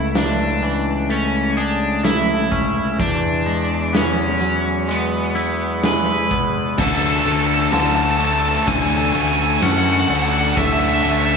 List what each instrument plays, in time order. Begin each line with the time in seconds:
Already playing: picked electric bass C#2, clean electric guitar C#3 A3, overdriven electric guitar E4
0.15 overdriven electric guitar D4, snare, closed hi-hat
0.62 clean electric guitar E3, closed hi-hat
1.10 clean electric guitar A3, overdriven electric guitar C#4, closed hi-hat
1.57 overdriven electric guitar D4, clean electric guitar G#4, closed hi-hat
2.04 clean electric guitar A3, overdriven electric guitar E4, snare, closed hi-hat
2.51 clean electric guitar C#4, kick, closed hi-hat
2.99 clean electric guitar E2, picked electric bass E2, overdriven electric guitar D4, kick, closed hi-hat
3.46 clean electric guitar G#3, closed hi-hat
3.93 clean electric guitar B3, overdriven electric guitar C#4, snare, closed hi-hat
4.41 clean electric guitar F#3, closed hi-hat
4.88 clean electric guitar G#3, overdriven electric guitar B3, closed hi-hat
5.35 clean electric guitar E4, closed hi-hat
5.83 clean electric guitar G#3, overdriven electric guitar B4, snare, closed hi-hat
6.31 clean electric guitar B3, kick, closed hi-hat
6.78 picked electric bass D2, clean electric guitar D3, distorted electric guitar C#4 A4, overdriven electric guitar A4, kick, snare, crash
6.85 distorted electric guitar C#4 A4, overdriven electric guitar A4
6.92 distorted electric guitar C#4 A4, overdriven electric guitar A4
7.02 distorted electric guitar C#4 A4, overdriven electric guitar A4
7.09 distorted electric guitar C#4 A4, overdriven electric guitar A4
7.16 distorted electric guitar C#4 A4, overdriven electric guitar A4
7.23 picked electric bass D2, distorted electric guitar C#4 A4, overdriven electric guitar A4, ride
7.32 distorted electric guitar C#4 A4, overdriven electric guitar A4
7.39 distorted electric guitar C#4 A4, overdriven electric guitar A4
7.46 distorted electric guitar C#4 A4, overdriven electric guitar A4
7.54 distorted electric guitar C#4 A4, overdriven electric guitar A4
7.62 distorted electric guitar C#4 A4, overdriven electric guitar A4
7.69 picked electric bass D2, clean electric guitar D3, distorted electric guitar C#4 A4, overdriven electric guitar A4 A5, snare, ride
7.78 distorted electric guitar C#4 A4, overdriven electric guitar A5
7.85 distorted electric guitar C#4 A4, overdriven electric guitar A5
7.93 distorted electric guitar C#4 A4, overdriven electric guitar A5
8.01 distorted electric guitar C#4 A4, overdriven electric guitar A5
8.09 distorted electric guitar C#4 A4, overdriven electric guitar A5
8.17 clean electric guitar A3, distorted electric guitar C#4 A4, overdriven electric guitar A5, ride
8.24 distorted electric guitar C#4 A4, overdriven electric guitar A5
8.31 distorted electric guitar C#4 A4, overdriven electric guitar A5
8.39 distorted electric guitar C#4 A4, overdriven electric guitar A5
8.47 distorted electric guitar C#4 A4, overdriven electric guitar A5
8.54 distorted electric guitar C#4 A4, overdriven electric guitar A5
8.62 distorted electric guitar C#4 A4, overdriven electric guitar A5
8.67 picked electric bass D2, clean electric guitar D3, distorted electric guitar C#4 A4, overdriven electric guitar G#5, kick, snare, ride
8.76 distorted electric guitar C#4 A4, overdriven electric guitar G#5
8.82 distorted electric guitar C#4 A4, overdriven electric guitar G#5
8.90 distorted electric guitar C#4, overdriven electric guitar G#5
8.95 distorted electric guitar A4, overdriven electric guitar G#5
9.01 distorted electric guitar C#4 A4
9.05 distorted electric guitar C#4 A4, overdriven electric guitar G#5
9.13 picked electric bass D2, clean electric guitar A3, distorted electric guitar C#4 A4, overdriven electric guitar G#5, ride
9.21 distorted electric guitar C#4 A4, overdriven electric guitar G#5
9.28 distorted electric guitar C#4, overdriven electric guitar G#5
9.32 distorted electric guitar A4, overdriven electric guitar G#5
9.40 distorted electric guitar C#4 A4, overdriven electric guitar G#5
9.47 distorted electric guitar C#4 A4, overdriven electric guitar G#5
9.54 distorted electric guitar C#4 A4
9.59 picked electric bass F#2, clean electric guitar C#4, overdriven electric guitar F#5 G#5, snare, ride
9.63 distorted electric guitar C#4 A4
9.70 distorted electric guitar C#4 A4, overdriven electric guitar F#5
9.77 distorted electric guitar C#4 A4, overdriven electric guitar F#5
9.84 distorted electric guitar C#4 A4, overdriven electric guitar F#5
9.92 distorted electric guitar C#4 A4, overdriven electric guitar F#5
10.00 distorted electric guitar C#4 A4, overdriven electric guitar F#5
10.08 picked electric bass D2, clean electric guitar D3, distorted electric guitar C#4 A4, overdriven electric guitar F#5, ride
10.15 distorted electric guitar C#4 A4, overdriven electric guitar F#5
10.22 distorted electric guitar C#4 A4, overdriven electric guitar F#5
10.30 distorted electric guitar C#4 A4, overdriven electric guitar F#5
10.38 distorted electric guitar C#4 A4, overdriven electric guitar F#5
10.44 distorted electric guitar C#4 A4, overdriven electric guitar F#5
10.53 distorted electric guitar C#4 A4, overdriven electric guitar F#5
10.57 picked electric bass D2, clean electric guitar D3, overdriven electric guitar E5, kick, snare, ride
10.63 distorted electric guitar C#4 A4, overdriven electric guitar E5
10.71 distorted electric guitar C#4 A4, overdriven electric guitar E5
10.79 distorted electric guitar C#4 A4, overdriven electric guitar E5
10.87 distorted electric guitar C#4 A4, overdriven electric guitar E5
10.94 distorted electric guitar C#4 A4, overdriven electric guitar E5
11.02 picked electric bass D2, distorted electric guitar C#4 A4, overdriven electric guitar E5, ride
11.10 distorted electric guitar C#4 A4, overdriven electric guitar E5
11.17 distorted electric guitar C#4 A4, overdriven electric guitar E5
11.25 distorted electric guitar C#4 A4, overdriven electric guitar E5
11.33 distorted electric guitar C#4, overdriven electric guitar E5